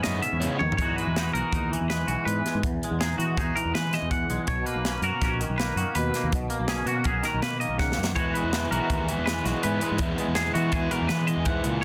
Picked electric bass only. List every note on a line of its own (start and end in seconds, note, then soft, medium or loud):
0.06 0.20 F#2 medium
0.32 0.47 E2 medium
0.61 0.68 D#2 medium
0.78 0.93 E2 medium
1.07 1.29 E2 medium
1.34 1.42 B1 medium
1.52 1.74 D#2 medium
1.81 2.02 E2 medium
2.08 2.15 B1 medium
2.26 2.41 G#2 medium
2.55 2.62 G#2 medium
2.64 2.78 E2 medium
2.91 3.13 E2 medium
3.19 3.38 E3 medium
3.37 3.52 E2 medium
3.65 3.72 E2 medium
3.74 3.96 E3 medium
4.02 4.24 E2 medium
4.30 4.37 B1 medium
4.48 4.62 B1 medium
4.75 4.97 B1 medium
5.02 5.10 F#2 medium
5.22 5.44 A#1 medium
5.49 5.71 B1 medium
5.76 5.84 F#2 medium
5.95 6.10 D#2 medium
6.24 6.31 D#2 medium
6.32 6.47 B1 medium
6.59 6.81 B1 medium
6.86 7.07 B2 medium
7.05 7.20 B1 medium
7.34 7.41 B1 medium
7.42 7.64 B2 medium
7.68 7.91 B1 medium
7.98 8.16 F#2 medium
8.16 8.31 E2 medium
8.44 8.66 E2 medium
8.71 8.79 B1 medium
8.90 9.12 D#2 medium
9.18 9.40 E2 medium
9.45 9.53 B1 medium
9.65 9.79 G#2 medium
9.91 9.98 G#2 medium
9.98 10.14 E2 medium
10.28 10.50 E2 medium
10.55 10.74 E3 medium
10.72 10.88 E2 medium
11.01 11.09 E2 medium
11.10 11.32 E3 medium
11.37 11.59 E2 medium
11.64 11.83 C#2 medium